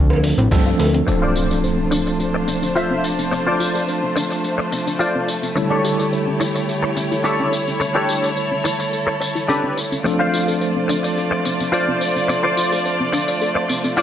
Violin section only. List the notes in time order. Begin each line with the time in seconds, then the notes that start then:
1.07 A3 D4 F4 C5
5.56 E4 G4 C#5
7.80 A4
10.04 A3 F4 C5 D5